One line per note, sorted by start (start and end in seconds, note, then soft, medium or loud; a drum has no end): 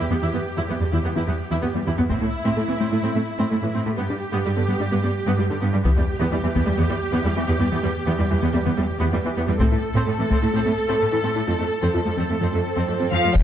0.00 2.06 G4 soft
0.10 0.15 E2 soft
0.10 0.15 B3 soft
0.10 0.18 B3 soft
0.22 0.27 E2 soft
0.22 0.30 E3 medium
0.22 0.27 E4 soft
0.34 0.39 E2 soft
0.34 0.41 B3 medium
0.34 0.39 B3 soft
0.57 0.63 E2 soft
0.57 0.64 E3 medium
0.57 0.62 E4 soft
0.69 0.75 E2 soft
0.69 0.74 B3 soft
0.69 0.76 E4 soft
0.81 0.86 E2 soft
0.81 0.88 G3 soft
0.81 0.86 G3 soft
0.93 0.98 E2 soft
0.93 1.00 E3 medium
0.93 0.97 E4 soft
1.04 1.10 E2 soft
1.04 1.09 B3 soft
1.04 1.12 B3 soft
1.16 1.21 E2 soft
1.16 1.23 E3 medium
1.16 1.21 E4 soft
1.28 1.33 E2 soft
1.28 1.35 G3 soft
1.28 1.32 B3 soft
1.51 1.56 E2 soft
1.51 1.58 E3 medium
1.51 1.56 E4 soft
1.63 1.68 E2 soft
1.63 1.67 B3 soft
1.63 1.70 E4 soft
1.75 1.80 E2 soft
1.75 1.80 G3 soft
1.75 1.82 B3 soft
1.87 1.91 E2 soft
1.87 1.94 E3 medium
1.87 1.91 E4 soft
1.98 2.03 E2 soft
1.98 2.03 B3 soft
1.98 2.05 B3 soft
2.09 2.15 A2 soft
2.09 2.17 A3 medium
2.09 2.14 C4 soft
2.09 3.94 E4 soft
2.09 taiko soft
2.22 2.27 A2 soft
2.22 2.27 A3 soft
2.22 2.29 E4 soft
2.45 2.50 A2 soft
2.45 2.52 A3 medium
2.45 2.49 C4 soft
2.57 2.62 A2 soft
2.57 2.61 A3 soft
2.57 2.64 A4 soft
2.68 2.73 A2 soft
2.68 2.73 E3 soft
2.68 2.76 C4 soft
2.80 2.85 A2 soft
2.80 2.87 A3 medium
2.80 2.85 C4 soft
2.92 2.96 A2 soft
2.92 2.97 A3 soft
2.92 2.99 E4 soft
3.03 3.08 A2 soft
3.03 3.11 A3 medium
3.03 3.08 C4 soft
3.15 3.20 A2 soft
3.15 3.20 A3 soft
3.15 3.23 C4 soft
3.38 3.44 A2 soft
3.38 3.46 A3 medium
3.38 3.43 C4 soft
3.50 3.56 A2 soft
3.50 3.55 A3 soft
3.50 3.58 A4 soft
3.62 3.67 A2 soft
3.62 3.67 E3 soft
3.62 3.70 E4 soft
3.74 3.79 A2 soft
3.74 3.81 A3 medium
3.74 3.79 C4 soft
3.86 3.91 A2 soft
3.86 3.91 A3 soft
3.86 3.93 E4 medium
3.97 4.03 G2 soft
3.97 4.05 G3 medium
3.97 4.02 B3 soft
3.97 5.81 G4 soft
4.09 4.15 G2 soft
4.09 4.14 G3 soft
4.09 4.17 D4 medium
4.33 4.38 G2 medium
4.33 4.40 G3 medium
4.33 4.37 B3 medium
4.45 4.50 G2 soft
4.45 4.50 G3 soft
4.45 4.52 G4 soft
4.57 4.62 G2 soft
4.57 4.61 D3 soft
4.57 4.63 B3 medium
4.68 4.74 G2 soft
4.68 4.75 G3 medium
4.68 4.73 B3 medium
4.80 4.85 G2 soft
4.80 4.85 G3 soft
4.80 4.87 D4 medium
4.91 4.97 G2 medium
4.91 4.99 G3 medium
4.91 4.96 B3 soft
5.04 5.09 G2 soft
5.04 5.08 G3 soft
5.04 5.11 B3 medium
5.27 5.32 G2 medium
5.27 5.34 G3 medium
5.27 5.31 B3 medium
5.38 5.44 G2 soft
5.38 5.43 G3 soft
5.38 5.46 G4 medium
5.50 5.55 G2 soft
5.50 5.55 D3 soft
5.50 5.57 D4 medium
5.62 5.67 G2 medium
5.62 5.69 G3 medium
5.62 5.66 B3 soft
5.73 5.78 G2 soft
5.73 5.78 G3 soft
5.73 5.81 D4 medium
5.84 5.90 E2 medium
5.84 5.92 E3 medium
5.84 5.89 B3 medium
5.84 9.55 G4 soft
5.84 taiko soft
5.97 6.02 E2 soft
5.97 6.01 G3 soft
5.97 6.04 B3 medium
6.20 6.25 E2 medium
6.20 6.28 E3 medium
6.20 6.25 B3 medium
6.32 6.37 E2 soft
6.32 6.36 G3 soft
6.32 6.39 E4 medium
6.43 6.49 E2 soft
6.43 6.48 E3 soft
6.43 6.51 G3 medium
6.55 6.60 E2 soft
6.55 6.62 E3 medium
6.55 6.59 B3 medium
6.55 taiko soft
6.66 6.72 E2 soft
6.66 6.71 G3 soft
6.66 6.74 B3 soft
6.77 6.84 E2 medium
6.77 6.86 E3 medium
6.77 6.82 B3 medium
6.89 6.95 E2 soft
6.89 6.94 G3 soft
6.89 6.98 G3 medium
7.13 7.18 E2 medium
7.13 7.21 E3 medium
7.13 7.18 B3 medium
7.25 7.30 E2 soft
7.25 7.29 G3 soft
7.25 7.33 E4 soft
7.36 7.42 E2 soft
7.36 7.41 E3 soft
7.36 7.44 B3 medium
7.48 7.54 E2 medium
7.48 7.56 E3 medium
7.48 7.53 B3 medium
7.60 7.65 E2 soft
7.60 7.65 G3 soft
7.60 7.68 B3 soft
7.72 7.77 E2 medium
7.72 7.79 E3 medium
7.72 7.76 B3 medium
7.83 7.89 E2 soft
7.83 7.88 G3 soft
7.83 7.91 B3 soft
8.07 8.12 E2 medium
8.07 8.14 E3 medium
8.07 8.11 B3 medium
8.19 8.24 E2 soft
8.19 8.23 G3 soft
8.19 8.26 E4 medium
8.30 8.36 E2 soft
8.30 8.35 E3 soft
8.30 8.38 G3 medium
8.42 8.47 E2 medium
8.42 8.49 E3 medium
8.42 8.47 B3 medium
8.53 8.59 E2 soft
8.53 8.58 G3 soft
8.53 8.61 B3 soft
8.65 8.71 E2 medium
8.65 8.73 E3 medium
8.65 8.70 B3 soft
8.77 8.83 E2 soft
8.77 8.82 G3 soft
8.77 8.85 G3 medium
9.00 9.06 E2 medium
9.00 9.08 E3 medium
9.00 9.05 B3 medium
9.13 9.18 E2 soft
9.13 9.18 G3 soft
9.13 9.20 E4 medium
9.24 9.30 E2 soft
9.24 9.30 E3 soft
9.24 9.31 B3 soft
9.36 9.41 E2 medium
9.36 9.43 E3 medium
9.36 9.41 B3 medium
9.48 9.53 E2 soft
9.48 9.53 G3 soft
9.48 9.55 B3 soft
9.59 9.65 A2 medium
9.59 9.67 A3 medium
9.59 9.64 C4 medium
9.59 13.11 A4 medium
9.59 taiko medium
9.71 9.76 A2 soft
9.71 9.77 A3 soft
9.71 9.79 E4 medium
9.95 9.99 A2 medium
9.95 10.02 A3 medium
9.95 10.00 C4 medium
10.07 10.11 A2 soft
10.07 10.12 A3 soft
10.07 10.14 A4 medium
10.19 10.23 A2 soft
10.19 10.24 E3 soft
10.19 10.26 C4 medium
10.30 10.35 A2 soft
10.30 10.37 A3 medium
10.30 10.35 C4 medium
10.30 taiko soft
10.42 10.47 A2 soft
10.42 10.47 A3 soft
10.42 10.49 E4 medium
10.54 10.59 A2 medium
10.54 10.61 A3 medium
10.54 10.59 C4 soft
10.65 10.71 A2 soft
10.65 10.70 A3 soft
10.65 10.72 C4 medium
10.89 10.94 A2 soft
10.89 10.96 A3 medium
10.89 10.93 C4 soft
11.00 11.06 A2 soft
11.00 11.05 A3 soft
11.00 11.07 A4 soft
11.12 11.17 A2 soft
11.12 11.17 E3 soft
11.12 11.19 E4 medium
11.24 11.28 A2 soft
11.24 11.31 A3 medium
11.24 11.28 C4 soft
11.36 11.40 A2 soft
11.36 11.40 A3 soft
11.36 11.43 E4 medium
11.47 11.52 F2 soft
11.47 11.55 F3 medium
11.47 11.52 C4 soft
11.47 swell soft
11.59 11.64 F2 soft
11.59 11.64 A3 soft
11.59 11.66 C4 soft
11.82 11.87 F2 soft
11.82 11.90 F3 medium
11.82 11.87 C4 soft
11.94 11.99 F2 soft
11.94 11.98 A3 soft
11.94 12.01 F4 soft
12.05 12.11 F2 soft
12.05 12.10 F3 soft
12.05 12.12 A3 medium
12.17 12.23 F2 soft
12.17 12.24 F3 medium
12.17 12.22 C4 soft
12.30 12.34 F2 soft
12.30 12.34 A3 soft
12.30 12.36 C4 soft
12.41 12.46 F2 soft
12.41 12.48 F3 medium
12.41 12.46 C4 soft
12.53 12.58 F2 soft
12.53 12.60 A3 soft
12.53 12.58 A3 soft
12.76 12.82 F2 soft
12.76 12.83 F3 medium
12.76 12.81 C4 soft
12.88 12.94 F2 soft
12.88 12.92 A3 soft
12.88 12.95 F4 soft
13.00 13.05 F2 soft
13.00 13.04 F3 soft
13.00 13.07 C4 soft
13.11 13.17 F2 soft
13.11 13.18 F3 medium
13.11 13.34 F3 soft
13.11 13.16 C4 soft
13.11 13.33 F5 soft
13.23 13.29 F2 soft
13.23 13.28 A3 soft
13.23 13.30 C4 medium
13.34 13.43 E1 medium
13.34 13.43 E3 soft
13.34 13.42 E3 medium
13.34 13.43 G3 soft
13.34 13.43 G3 medium
13.34 13.43 G5 medium
13.34 13.43 G5 soft
13.34 taiko medium
13.34 impact soft